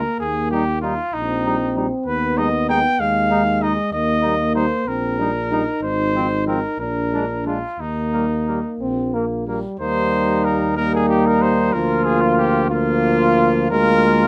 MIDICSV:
0, 0, Header, 1, 6, 480
1, 0, Start_track
1, 0, Key_signature, -3, "major"
1, 0, Tempo, 624350
1, 159, Time_signature, 6, 3, 24, 8
1, 4479, Tempo, 661521
1, 7359, Tempo, 651466
1, 10660, End_track
2, 0, Start_track
2, 0, Title_t, "Trumpet"
2, 0, Program_c, 0, 56
2, 0, Note_on_c, 0, 70, 61
2, 149, Note_off_c, 0, 70, 0
2, 154, Note_on_c, 0, 68, 61
2, 386, Note_off_c, 0, 68, 0
2, 391, Note_on_c, 0, 67, 59
2, 622, Note_off_c, 0, 67, 0
2, 627, Note_on_c, 0, 65, 60
2, 874, Note_on_c, 0, 63, 72
2, 886, Note_off_c, 0, 65, 0
2, 1383, Note_off_c, 0, 63, 0
2, 1584, Note_on_c, 0, 71, 65
2, 1829, Note_on_c, 0, 75, 68
2, 1840, Note_off_c, 0, 71, 0
2, 2067, Note_off_c, 0, 75, 0
2, 2071, Note_on_c, 0, 79, 72
2, 2305, Note_on_c, 0, 77, 67
2, 2317, Note_off_c, 0, 79, 0
2, 2784, Note_on_c, 0, 75, 63
2, 2796, Note_off_c, 0, 77, 0
2, 3017, Note_off_c, 0, 75, 0
2, 3021, Note_on_c, 0, 75, 71
2, 3492, Note_off_c, 0, 75, 0
2, 3502, Note_on_c, 0, 72, 63
2, 3752, Note_on_c, 0, 70, 61
2, 3764, Note_off_c, 0, 72, 0
2, 4476, Note_off_c, 0, 70, 0
2, 4480, Note_on_c, 0, 72, 64
2, 4937, Note_off_c, 0, 72, 0
2, 4946, Note_on_c, 0, 70, 57
2, 5181, Note_off_c, 0, 70, 0
2, 5189, Note_on_c, 0, 70, 60
2, 5658, Note_off_c, 0, 70, 0
2, 5671, Note_on_c, 0, 65, 52
2, 5913, Note_on_c, 0, 63, 50
2, 5924, Note_off_c, 0, 65, 0
2, 6641, Note_off_c, 0, 63, 0
2, 7360, Note_on_c, 0, 72, 75
2, 7838, Note_on_c, 0, 70, 59
2, 7849, Note_off_c, 0, 72, 0
2, 8068, Note_off_c, 0, 70, 0
2, 8072, Note_on_c, 0, 70, 75
2, 8195, Note_off_c, 0, 70, 0
2, 8207, Note_on_c, 0, 68, 64
2, 8308, Note_off_c, 0, 68, 0
2, 8312, Note_on_c, 0, 67, 65
2, 8445, Note_on_c, 0, 70, 64
2, 8456, Note_off_c, 0, 67, 0
2, 8557, Note_on_c, 0, 72, 70
2, 8568, Note_off_c, 0, 70, 0
2, 8785, Note_on_c, 0, 70, 65
2, 8796, Note_off_c, 0, 72, 0
2, 9018, Note_on_c, 0, 68, 68
2, 9029, Note_off_c, 0, 70, 0
2, 9140, Note_on_c, 0, 65, 64
2, 9151, Note_off_c, 0, 68, 0
2, 9253, Note_off_c, 0, 65, 0
2, 9257, Note_on_c, 0, 67, 69
2, 9495, Note_off_c, 0, 67, 0
2, 9499, Note_on_c, 0, 65, 80
2, 10228, Note_off_c, 0, 65, 0
2, 10241, Note_on_c, 0, 70, 86
2, 10660, Note_off_c, 0, 70, 0
2, 10660, End_track
3, 0, Start_track
3, 0, Title_t, "Flugelhorn"
3, 0, Program_c, 1, 56
3, 410, Note_on_c, 1, 63, 39
3, 494, Note_off_c, 1, 63, 0
3, 640, Note_on_c, 1, 63, 40
3, 726, Note_off_c, 1, 63, 0
3, 1122, Note_on_c, 1, 63, 44
3, 1206, Note_off_c, 1, 63, 0
3, 1355, Note_on_c, 1, 63, 39
3, 1441, Note_off_c, 1, 63, 0
3, 1821, Note_on_c, 1, 63, 42
3, 1909, Note_off_c, 1, 63, 0
3, 2065, Note_on_c, 1, 63, 44
3, 2152, Note_off_c, 1, 63, 0
3, 2542, Note_on_c, 1, 63, 45
3, 2628, Note_off_c, 1, 63, 0
3, 2784, Note_on_c, 1, 63, 40
3, 2869, Note_off_c, 1, 63, 0
3, 3248, Note_on_c, 1, 63, 41
3, 3337, Note_off_c, 1, 63, 0
3, 3494, Note_on_c, 1, 63, 41
3, 3584, Note_off_c, 1, 63, 0
3, 3998, Note_on_c, 1, 63, 40
3, 4085, Note_off_c, 1, 63, 0
3, 4244, Note_on_c, 1, 63, 39
3, 4330, Note_off_c, 1, 63, 0
3, 4720, Note_on_c, 1, 60, 37
3, 4803, Note_off_c, 1, 60, 0
3, 4949, Note_on_c, 1, 60, 38
3, 5035, Note_off_c, 1, 60, 0
3, 5431, Note_on_c, 1, 62, 38
3, 5516, Note_off_c, 1, 62, 0
3, 5660, Note_on_c, 1, 62, 31
3, 5749, Note_off_c, 1, 62, 0
3, 6152, Note_on_c, 1, 58, 31
3, 6241, Note_off_c, 1, 58, 0
3, 6399, Note_on_c, 1, 58, 35
3, 6486, Note_off_c, 1, 58, 0
3, 6882, Note_on_c, 1, 58, 33
3, 6968, Note_off_c, 1, 58, 0
3, 7130, Note_on_c, 1, 58, 31
3, 7214, Note_off_c, 1, 58, 0
3, 7364, Note_on_c, 1, 63, 51
3, 8056, Note_off_c, 1, 63, 0
3, 8084, Note_on_c, 1, 63, 53
3, 8782, Note_off_c, 1, 63, 0
3, 8794, Note_on_c, 1, 65, 53
3, 9494, Note_off_c, 1, 65, 0
3, 9499, Note_on_c, 1, 65, 60
3, 10228, Note_off_c, 1, 65, 0
3, 10243, Note_on_c, 1, 65, 62
3, 10660, Note_off_c, 1, 65, 0
3, 10660, End_track
4, 0, Start_track
4, 0, Title_t, "Euphonium"
4, 0, Program_c, 2, 58
4, 0, Note_on_c, 2, 58, 53
4, 672, Note_off_c, 2, 58, 0
4, 884, Note_on_c, 2, 60, 52
4, 1592, Note_on_c, 2, 59, 55
4, 1603, Note_off_c, 2, 60, 0
4, 2308, Note_on_c, 2, 56, 54
4, 2319, Note_off_c, 2, 59, 0
4, 3016, Note_off_c, 2, 56, 0
4, 3020, Note_on_c, 2, 58, 54
4, 3746, Note_on_c, 2, 60, 48
4, 3758, Note_off_c, 2, 58, 0
4, 3992, Note_on_c, 2, 62, 49
4, 4003, Note_off_c, 2, 60, 0
4, 4239, Note_on_c, 2, 63, 57
4, 4250, Note_off_c, 2, 62, 0
4, 5182, Note_off_c, 2, 63, 0
4, 5186, Note_on_c, 2, 62, 47
4, 5688, Note_off_c, 2, 62, 0
4, 5907, Note_on_c, 2, 58, 42
4, 6968, Note_off_c, 2, 58, 0
4, 7361, Note_on_c, 2, 55, 52
4, 8054, Note_off_c, 2, 55, 0
4, 8080, Note_on_c, 2, 55, 54
4, 8795, Note_on_c, 2, 53, 57
4, 8807, Note_off_c, 2, 55, 0
4, 9509, Note_off_c, 2, 53, 0
4, 9512, Note_on_c, 2, 53, 57
4, 10252, Note_on_c, 2, 56, 60
4, 10263, Note_off_c, 2, 53, 0
4, 10660, Note_off_c, 2, 56, 0
4, 10660, End_track
5, 0, Start_track
5, 0, Title_t, "French horn"
5, 0, Program_c, 3, 60
5, 394, Note_on_c, 3, 55, 40
5, 482, Note_off_c, 3, 55, 0
5, 637, Note_on_c, 3, 55, 39
5, 724, Note_off_c, 3, 55, 0
5, 1113, Note_on_c, 3, 55, 42
5, 1199, Note_off_c, 3, 55, 0
5, 1353, Note_on_c, 3, 55, 43
5, 1439, Note_off_c, 3, 55, 0
5, 1832, Note_on_c, 3, 56, 46
5, 1917, Note_off_c, 3, 56, 0
5, 2074, Note_on_c, 3, 56, 42
5, 2159, Note_off_c, 3, 56, 0
5, 2544, Note_on_c, 3, 56, 40
5, 2631, Note_off_c, 3, 56, 0
5, 2783, Note_on_c, 3, 56, 42
5, 2869, Note_off_c, 3, 56, 0
5, 3263, Note_on_c, 3, 55, 41
5, 3349, Note_off_c, 3, 55, 0
5, 3499, Note_on_c, 3, 55, 41
5, 3588, Note_off_c, 3, 55, 0
5, 3988, Note_on_c, 3, 55, 38
5, 4077, Note_off_c, 3, 55, 0
5, 4234, Note_on_c, 3, 55, 40
5, 4322, Note_off_c, 3, 55, 0
5, 4709, Note_on_c, 3, 53, 37
5, 4794, Note_off_c, 3, 53, 0
5, 4942, Note_on_c, 3, 53, 36
5, 5029, Note_off_c, 3, 53, 0
5, 5423, Note_on_c, 3, 56, 36
5, 5510, Note_off_c, 3, 56, 0
5, 5666, Note_on_c, 3, 56, 34
5, 5754, Note_off_c, 3, 56, 0
5, 6159, Note_on_c, 3, 55, 32
5, 6246, Note_off_c, 3, 55, 0
5, 6411, Note_on_c, 3, 55, 34
5, 6495, Note_off_c, 3, 55, 0
5, 6643, Note_on_c, 3, 60, 52
5, 6883, Note_on_c, 3, 58, 41
5, 6894, Note_off_c, 3, 60, 0
5, 7121, Note_off_c, 3, 58, 0
5, 7125, Note_on_c, 3, 55, 37
5, 7357, Note_off_c, 3, 55, 0
5, 7365, Note_on_c, 3, 58, 54
5, 8056, Note_off_c, 3, 58, 0
5, 8092, Note_on_c, 3, 58, 57
5, 8786, Note_off_c, 3, 58, 0
5, 8798, Note_on_c, 3, 58, 59
5, 9496, Note_off_c, 3, 58, 0
5, 9501, Note_on_c, 3, 58, 64
5, 10229, Note_off_c, 3, 58, 0
5, 10244, Note_on_c, 3, 58, 62
5, 10660, Note_off_c, 3, 58, 0
5, 10660, End_track
6, 0, Start_track
6, 0, Title_t, "Bass trombone"
6, 0, Program_c, 4, 57
6, 156, Note_on_c, 4, 39, 53
6, 758, Note_off_c, 4, 39, 0
6, 875, Note_on_c, 4, 34, 51
6, 1472, Note_off_c, 4, 34, 0
6, 1590, Note_on_c, 4, 39, 55
6, 2188, Note_off_c, 4, 39, 0
6, 2310, Note_on_c, 4, 39, 53
6, 2903, Note_off_c, 4, 39, 0
6, 3020, Note_on_c, 4, 39, 51
6, 3624, Note_off_c, 4, 39, 0
6, 3744, Note_on_c, 4, 34, 50
6, 4357, Note_off_c, 4, 34, 0
6, 4472, Note_on_c, 4, 32, 51
6, 5062, Note_off_c, 4, 32, 0
6, 5180, Note_on_c, 4, 34, 47
6, 5785, Note_off_c, 4, 34, 0
6, 5907, Note_on_c, 4, 39, 43
6, 6517, Note_off_c, 4, 39, 0
6, 6640, Note_on_c, 4, 34, 42
6, 7241, Note_off_c, 4, 34, 0
6, 7363, Note_on_c, 4, 39, 54
6, 8768, Note_off_c, 4, 39, 0
6, 8797, Note_on_c, 4, 38, 55
6, 10219, Note_off_c, 4, 38, 0
6, 10245, Note_on_c, 4, 38, 64
6, 10660, Note_off_c, 4, 38, 0
6, 10660, End_track
0, 0, End_of_file